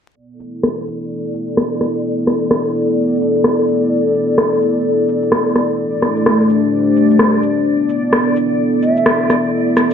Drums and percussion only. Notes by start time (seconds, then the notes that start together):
0.40 shaker
0.63 cross-stick
0.87 shaker
1.34 shaker
1.48 shaker
1.57 cross-stick
1.81 cross-stick, shaker
2.27 cross-stick, shaker
2.42 shaker
2.51 cross-stick
2.75 shaker
3.22 shaker
3.35 shaker
3.44 cross-stick
3.68 shaker
4.15 shaker
4.38 cross-stick
4.62 shaker
5.09 shaker
5.22 shaker
5.32 cross-stick
5.56 cross-stick, shaker
6.02 cross-stick, shaker
6.17 shaker
6.26 cross-stick
6.50 shaker
6.97 shaker
7.11 shaker
7.19 cross-stick
7.43 shaker
7.89 shaker
8.13 cross-stick
8.36 shaker
8.83 shaker
8.97 shaker
9.06 cross-stick
9.30 cross-stick, shaker
9.77 cross-stick, shaker